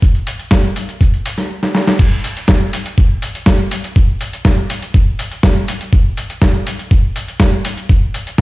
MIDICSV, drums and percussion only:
0, 0, Header, 1, 2, 480
1, 0, Start_track
1, 0, Tempo, 491803
1, 23, Time_signature, 4, 2, 24, 8
1, 8208, End_track
2, 0, Start_track
2, 0, Title_t, "Drums"
2, 22, Note_on_c, 9, 42, 55
2, 23, Note_on_c, 9, 36, 112
2, 29, Note_on_c, 9, 82, 44
2, 120, Note_off_c, 9, 42, 0
2, 121, Note_off_c, 9, 36, 0
2, 127, Note_off_c, 9, 82, 0
2, 145, Note_on_c, 9, 42, 28
2, 152, Note_on_c, 9, 82, 23
2, 243, Note_off_c, 9, 42, 0
2, 250, Note_off_c, 9, 82, 0
2, 259, Note_on_c, 9, 82, 84
2, 262, Note_on_c, 9, 46, 97
2, 269, Note_off_c, 9, 82, 0
2, 269, Note_on_c, 9, 82, 75
2, 360, Note_off_c, 9, 46, 0
2, 367, Note_off_c, 9, 82, 0
2, 385, Note_on_c, 9, 42, 53
2, 387, Note_on_c, 9, 82, 42
2, 392, Note_off_c, 9, 82, 0
2, 392, Note_on_c, 9, 82, 33
2, 482, Note_off_c, 9, 42, 0
2, 489, Note_off_c, 9, 82, 0
2, 497, Note_on_c, 9, 38, 112
2, 503, Note_on_c, 9, 36, 109
2, 503, Note_on_c, 9, 42, 52
2, 508, Note_on_c, 9, 82, 38
2, 510, Note_off_c, 9, 82, 0
2, 510, Note_on_c, 9, 82, 45
2, 595, Note_off_c, 9, 38, 0
2, 600, Note_off_c, 9, 42, 0
2, 601, Note_off_c, 9, 36, 0
2, 607, Note_off_c, 9, 82, 0
2, 628, Note_on_c, 9, 42, 27
2, 635, Note_on_c, 9, 82, 22
2, 725, Note_off_c, 9, 42, 0
2, 732, Note_off_c, 9, 82, 0
2, 742, Note_on_c, 9, 46, 96
2, 745, Note_on_c, 9, 82, 84
2, 749, Note_off_c, 9, 82, 0
2, 749, Note_on_c, 9, 82, 82
2, 840, Note_off_c, 9, 46, 0
2, 847, Note_off_c, 9, 82, 0
2, 867, Note_on_c, 9, 42, 53
2, 874, Note_on_c, 9, 82, 52
2, 965, Note_off_c, 9, 42, 0
2, 972, Note_off_c, 9, 82, 0
2, 983, Note_on_c, 9, 36, 112
2, 985, Note_on_c, 9, 82, 39
2, 986, Note_on_c, 9, 42, 53
2, 993, Note_off_c, 9, 82, 0
2, 993, Note_on_c, 9, 82, 46
2, 1081, Note_off_c, 9, 36, 0
2, 1084, Note_off_c, 9, 42, 0
2, 1091, Note_off_c, 9, 82, 0
2, 1110, Note_on_c, 9, 42, 27
2, 1117, Note_on_c, 9, 82, 22
2, 1208, Note_off_c, 9, 42, 0
2, 1215, Note_off_c, 9, 82, 0
2, 1223, Note_on_c, 9, 82, 85
2, 1226, Note_on_c, 9, 46, 104
2, 1232, Note_off_c, 9, 82, 0
2, 1232, Note_on_c, 9, 82, 83
2, 1323, Note_off_c, 9, 46, 0
2, 1330, Note_off_c, 9, 82, 0
2, 1344, Note_on_c, 9, 38, 36
2, 1350, Note_on_c, 9, 42, 55
2, 1351, Note_on_c, 9, 82, 52
2, 1357, Note_off_c, 9, 82, 0
2, 1357, Note_on_c, 9, 82, 34
2, 1442, Note_off_c, 9, 38, 0
2, 1448, Note_off_c, 9, 42, 0
2, 1455, Note_off_c, 9, 82, 0
2, 1589, Note_on_c, 9, 38, 53
2, 1687, Note_off_c, 9, 38, 0
2, 1705, Note_on_c, 9, 38, 75
2, 1803, Note_off_c, 9, 38, 0
2, 1830, Note_on_c, 9, 38, 76
2, 1927, Note_off_c, 9, 38, 0
2, 1946, Note_on_c, 9, 36, 119
2, 1946, Note_on_c, 9, 82, 49
2, 1947, Note_on_c, 9, 42, 53
2, 1947, Note_on_c, 9, 49, 95
2, 1954, Note_off_c, 9, 82, 0
2, 1954, Note_on_c, 9, 82, 32
2, 2043, Note_off_c, 9, 36, 0
2, 2045, Note_off_c, 9, 42, 0
2, 2045, Note_off_c, 9, 49, 0
2, 2052, Note_off_c, 9, 82, 0
2, 2071, Note_on_c, 9, 82, 26
2, 2168, Note_off_c, 9, 82, 0
2, 2187, Note_on_c, 9, 46, 97
2, 2188, Note_on_c, 9, 82, 83
2, 2194, Note_off_c, 9, 82, 0
2, 2194, Note_on_c, 9, 82, 77
2, 2285, Note_off_c, 9, 46, 0
2, 2292, Note_off_c, 9, 82, 0
2, 2311, Note_on_c, 9, 42, 64
2, 2318, Note_on_c, 9, 82, 44
2, 2319, Note_off_c, 9, 82, 0
2, 2319, Note_on_c, 9, 82, 36
2, 2408, Note_off_c, 9, 42, 0
2, 2416, Note_off_c, 9, 82, 0
2, 2420, Note_on_c, 9, 38, 123
2, 2425, Note_on_c, 9, 42, 52
2, 2426, Note_on_c, 9, 36, 118
2, 2431, Note_on_c, 9, 82, 58
2, 2432, Note_off_c, 9, 82, 0
2, 2432, Note_on_c, 9, 82, 33
2, 2517, Note_off_c, 9, 38, 0
2, 2523, Note_off_c, 9, 42, 0
2, 2524, Note_off_c, 9, 36, 0
2, 2530, Note_off_c, 9, 82, 0
2, 2547, Note_on_c, 9, 82, 26
2, 2645, Note_off_c, 9, 82, 0
2, 2665, Note_on_c, 9, 82, 92
2, 2666, Note_on_c, 9, 46, 104
2, 2673, Note_off_c, 9, 82, 0
2, 2673, Note_on_c, 9, 82, 79
2, 2764, Note_off_c, 9, 46, 0
2, 2771, Note_off_c, 9, 82, 0
2, 2786, Note_on_c, 9, 82, 39
2, 2789, Note_on_c, 9, 42, 68
2, 2796, Note_off_c, 9, 82, 0
2, 2796, Note_on_c, 9, 82, 45
2, 2887, Note_off_c, 9, 42, 0
2, 2894, Note_off_c, 9, 82, 0
2, 2901, Note_on_c, 9, 82, 53
2, 2905, Note_on_c, 9, 42, 55
2, 2906, Note_on_c, 9, 36, 124
2, 2912, Note_off_c, 9, 82, 0
2, 2912, Note_on_c, 9, 82, 34
2, 3002, Note_off_c, 9, 42, 0
2, 3003, Note_off_c, 9, 36, 0
2, 3009, Note_off_c, 9, 82, 0
2, 3022, Note_on_c, 9, 82, 28
2, 3120, Note_off_c, 9, 82, 0
2, 3144, Note_on_c, 9, 82, 93
2, 3145, Note_on_c, 9, 46, 109
2, 3152, Note_off_c, 9, 82, 0
2, 3152, Note_on_c, 9, 82, 82
2, 3243, Note_off_c, 9, 46, 0
2, 3250, Note_off_c, 9, 82, 0
2, 3265, Note_on_c, 9, 82, 36
2, 3270, Note_on_c, 9, 42, 68
2, 3278, Note_off_c, 9, 82, 0
2, 3278, Note_on_c, 9, 82, 44
2, 3368, Note_off_c, 9, 42, 0
2, 3375, Note_off_c, 9, 82, 0
2, 3379, Note_on_c, 9, 38, 120
2, 3381, Note_on_c, 9, 82, 55
2, 3384, Note_on_c, 9, 42, 57
2, 3385, Note_on_c, 9, 36, 115
2, 3391, Note_off_c, 9, 82, 0
2, 3391, Note_on_c, 9, 82, 34
2, 3476, Note_off_c, 9, 38, 0
2, 3482, Note_off_c, 9, 42, 0
2, 3483, Note_off_c, 9, 36, 0
2, 3489, Note_off_c, 9, 82, 0
2, 3508, Note_on_c, 9, 82, 28
2, 3606, Note_off_c, 9, 82, 0
2, 3624, Note_on_c, 9, 46, 105
2, 3625, Note_on_c, 9, 82, 88
2, 3631, Note_off_c, 9, 82, 0
2, 3631, Note_on_c, 9, 82, 82
2, 3722, Note_off_c, 9, 46, 0
2, 3729, Note_off_c, 9, 82, 0
2, 3744, Note_on_c, 9, 82, 34
2, 3750, Note_on_c, 9, 42, 67
2, 3757, Note_off_c, 9, 82, 0
2, 3757, Note_on_c, 9, 82, 44
2, 3848, Note_off_c, 9, 42, 0
2, 3855, Note_off_c, 9, 82, 0
2, 3864, Note_on_c, 9, 82, 56
2, 3865, Note_on_c, 9, 36, 119
2, 3866, Note_on_c, 9, 42, 52
2, 3873, Note_off_c, 9, 82, 0
2, 3873, Note_on_c, 9, 82, 30
2, 3962, Note_off_c, 9, 36, 0
2, 3964, Note_off_c, 9, 42, 0
2, 3971, Note_off_c, 9, 82, 0
2, 3989, Note_on_c, 9, 82, 27
2, 4086, Note_off_c, 9, 82, 0
2, 4095, Note_on_c, 9, 82, 93
2, 4106, Note_on_c, 9, 46, 102
2, 4113, Note_off_c, 9, 82, 0
2, 4113, Note_on_c, 9, 82, 72
2, 4203, Note_off_c, 9, 46, 0
2, 4210, Note_off_c, 9, 82, 0
2, 4230, Note_on_c, 9, 42, 64
2, 4234, Note_on_c, 9, 82, 42
2, 4237, Note_off_c, 9, 82, 0
2, 4237, Note_on_c, 9, 82, 45
2, 4327, Note_off_c, 9, 42, 0
2, 4334, Note_off_c, 9, 82, 0
2, 4342, Note_on_c, 9, 38, 116
2, 4344, Note_on_c, 9, 36, 123
2, 4347, Note_on_c, 9, 42, 49
2, 4349, Note_on_c, 9, 82, 52
2, 4354, Note_off_c, 9, 82, 0
2, 4354, Note_on_c, 9, 82, 30
2, 4439, Note_off_c, 9, 38, 0
2, 4442, Note_off_c, 9, 36, 0
2, 4445, Note_off_c, 9, 42, 0
2, 4452, Note_off_c, 9, 82, 0
2, 4468, Note_on_c, 9, 82, 26
2, 4565, Note_off_c, 9, 82, 0
2, 4583, Note_on_c, 9, 82, 98
2, 4586, Note_on_c, 9, 46, 110
2, 4593, Note_off_c, 9, 82, 0
2, 4593, Note_on_c, 9, 82, 77
2, 4683, Note_off_c, 9, 46, 0
2, 4690, Note_off_c, 9, 82, 0
2, 4701, Note_on_c, 9, 82, 39
2, 4708, Note_on_c, 9, 42, 66
2, 4715, Note_off_c, 9, 82, 0
2, 4715, Note_on_c, 9, 82, 42
2, 4806, Note_off_c, 9, 42, 0
2, 4813, Note_off_c, 9, 82, 0
2, 4816, Note_on_c, 9, 82, 53
2, 4824, Note_on_c, 9, 36, 127
2, 4825, Note_on_c, 9, 42, 53
2, 4832, Note_off_c, 9, 82, 0
2, 4832, Note_on_c, 9, 82, 33
2, 4922, Note_off_c, 9, 36, 0
2, 4923, Note_off_c, 9, 42, 0
2, 4930, Note_off_c, 9, 82, 0
2, 4947, Note_on_c, 9, 82, 28
2, 5045, Note_off_c, 9, 82, 0
2, 5064, Note_on_c, 9, 82, 91
2, 5066, Note_on_c, 9, 46, 110
2, 5073, Note_off_c, 9, 82, 0
2, 5073, Note_on_c, 9, 82, 78
2, 5164, Note_off_c, 9, 46, 0
2, 5171, Note_off_c, 9, 82, 0
2, 5187, Note_on_c, 9, 42, 66
2, 5187, Note_on_c, 9, 82, 39
2, 5194, Note_off_c, 9, 82, 0
2, 5194, Note_on_c, 9, 82, 45
2, 5285, Note_off_c, 9, 42, 0
2, 5292, Note_off_c, 9, 82, 0
2, 5296, Note_on_c, 9, 82, 56
2, 5302, Note_on_c, 9, 38, 124
2, 5304, Note_on_c, 9, 36, 127
2, 5308, Note_on_c, 9, 42, 53
2, 5315, Note_off_c, 9, 82, 0
2, 5315, Note_on_c, 9, 82, 33
2, 5400, Note_off_c, 9, 38, 0
2, 5402, Note_off_c, 9, 36, 0
2, 5405, Note_off_c, 9, 42, 0
2, 5413, Note_off_c, 9, 82, 0
2, 5421, Note_on_c, 9, 82, 30
2, 5519, Note_off_c, 9, 82, 0
2, 5540, Note_on_c, 9, 82, 102
2, 5546, Note_on_c, 9, 46, 107
2, 5553, Note_off_c, 9, 82, 0
2, 5553, Note_on_c, 9, 82, 77
2, 5644, Note_off_c, 9, 46, 0
2, 5650, Note_off_c, 9, 82, 0
2, 5666, Note_on_c, 9, 82, 40
2, 5669, Note_on_c, 9, 42, 66
2, 5676, Note_off_c, 9, 82, 0
2, 5676, Note_on_c, 9, 82, 42
2, 5766, Note_off_c, 9, 42, 0
2, 5773, Note_off_c, 9, 82, 0
2, 5780, Note_on_c, 9, 82, 52
2, 5784, Note_on_c, 9, 36, 127
2, 5785, Note_on_c, 9, 42, 51
2, 5792, Note_off_c, 9, 82, 0
2, 5792, Note_on_c, 9, 82, 32
2, 5882, Note_off_c, 9, 36, 0
2, 5883, Note_off_c, 9, 42, 0
2, 5889, Note_off_c, 9, 82, 0
2, 5903, Note_on_c, 9, 82, 27
2, 6001, Note_off_c, 9, 82, 0
2, 6017, Note_on_c, 9, 82, 93
2, 6025, Note_on_c, 9, 46, 106
2, 6032, Note_off_c, 9, 82, 0
2, 6032, Note_on_c, 9, 82, 73
2, 6123, Note_off_c, 9, 46, 0
2, 6130, Note_off_c, 9, 82, 0
2, 6143, Note_on_c, 9, 82, 38
2, 6148, Note_on_c, 9, 42, 66
2, 6155, Note_off_c, 9, 82, 0
2, 6155, Note_on_c, 9, 82, 42
2, 6246, Note_off_c, 9, 42, 0
2, 6253, Note_off_c, 9, 82, 0
2, 6256, Note_on_c, 9, 82, 57
2, 6262, Note_on_c, 9, 38, 115
2, 6264, Note_on_c, 9, 36, 122
2, 6268, Note_on_c, 9, 42, 48
2, 6275, Note_off_c, 9, 82, 0
2, 6275, Note_on_c, 9, 82, 32
2, 6360, Note_off_c, 9, 38, 0
2, 6361, Note_off_c, 9, 36, 0
2, 6365, Note_off_c, 9, 42, 0
2, 6372, Note_off_c, 9, 82, 0
2, 6379, Note_on_c, 9, 82, 27
2, 6477, Note_off_c, 9, 82, 0
2, 6506, Note_on_c, 9, 82, 106
2, 6507, Note_on_c, 9, 46, 109
2, 6513, Note_off_c, 9, 82, 0
2, 6513, Note_on_c, 9, 82, 72
2, 6604, Note_off_c, 9, 46, 0
2, 6611, Note_off_c, 9, 82, 0
2, 6630, Note_on_c, 9, 42, 61
2, 6632, Note_on_c, 9, 82, 38
2, 6637, Note_off_c, 9, 82, 0
2, 6637, Note_on_c, 9, 82, 41
2, 6728, Note_off_c, 9, 42, 0
2, 6735, Note_off_c, 9, 82, 0
2, 6745, Note_on_c, 9, 36, 124
2, 6745, Note_on_c, 9, 82, 57
2, 6747, Note_on_c, 9, 42, 49
2, 6754, Note_off_c, 9, 82, 0
2, 6754, Note_on_c, 9, 82, 32
2, 6842, Note_off_c, 9, 36, 0
2, 6844, Note_off_c, 9, 42, 0
2, 6851, Note_off_c, 9, 82, 0
2, 6864, Note_on_c, 9, 82, 28
2, 6962, Note_off_c, 9, 82, 0
2, 6985, Note_on_c, 9, 82, 93
2, 6986, Note_on_c, 9, 46, 109
2, 6993, Note_off_c, 9, 82, 0
2, 6993, Note_on_c, 9, 82, 76
2, 7083, Note_off_c, 9, 46, 0
2, 7090, Note_off_c, 9, 82, 0
2, 7109, Note_on_c, 9, 42, 66
2, 7114, Note_on_c, 9, 82, 39
2, 7116, Note_off_c, 9, 82, 0
2, 7116, Note_on_c, 9, 82, 41
2, 7206, Note_off_c, 9, 42, 0
2, 7213, Note_off_c, 9, 82, 0
2, 7219, Note_on_c, 9, 38, 123
2, 7224, Note_on_c, 9, 36, 124
2, 7225, Note_on_c, 9, 42, 52
2, 7227, Note_on_c, 9, 82, 55
2, 7232, Note_off_c, 9, 82, 0
2, 7232, Note_on_c, 9, 82, 31
2, 7317, Note_off_c, 9, 38, 0
2, 7322, Note_off_c, 9, 36, 0
2, 7323, Note_off_c, 9, 42, 0
2, 7330, Note_off_c, 9, 82, 0
2, 7355, Note_on_c, 9, 82, 28
2, 7453, Note_off_c, 9, 82, 0
2, 7464, Note_on_c, 9, 46, 113
2, 7471, Note_on_c, 9, 82, 73
2, 7561, Note_off_c, 9, 46, 0
2, 7568, Note_off_c, 9, 82, 0
2, 7585, Note_on_c, 9, 82, 43
2, 7587, Note_on_c, 9, 42, 63
2, 7594, Note_off_c, 9, 82, 0
2, 7594, Note_on_c, 9, 82, 41
2, 7685, Note_off_c, 9, 42, 0
2, 7692, Note_off_c, 9, 82, 0
2, 7699, Note_on_c, 9, 82, 57
2, 7705, Note_on_c, 9, 36, 125
2, 7705, Note_on_c, 9, 42, 48
2, 7712, Note_off_c, 9, 82, 0
2, 7712, Note_on_c, 9, 82, 33
2, 7802, Note_off_c, 9, 36, 0
2, 7803, Note_off_c, 9, 42, 0
2, 7810, Note_off_c, 9, 82, 0
2, 7836, Note_on_c, 9, 82, 29
2, 7934, Note_off_c, 9, 82, 0
2, 7947, Note_on_c, 9, 46, 101
2, 7948, Note_on_c, 9, 82, 86
2, 7954, Note_off_c, 9, 82, 0
2, 7954, Note_on_c, 9, 82, 71
2, 8045, Note_off_c, 9, 46, 0
2, 8052, Note_off_c, 9, 82, 0
2, 8068, Note_on_c, 9, 82, 37
2, 8071, Note_on_c, 9, 42, 62
2, 8078, Note_off_c, 9, 82, 0
2, 8078, Note_on_c, 9, 82, 46
2, 8169, Note_off_c, 9, 42, 0
2, 8176, Note_off_c, 9, 82, 0
2, 8208, End_track
0, 0, End_of_file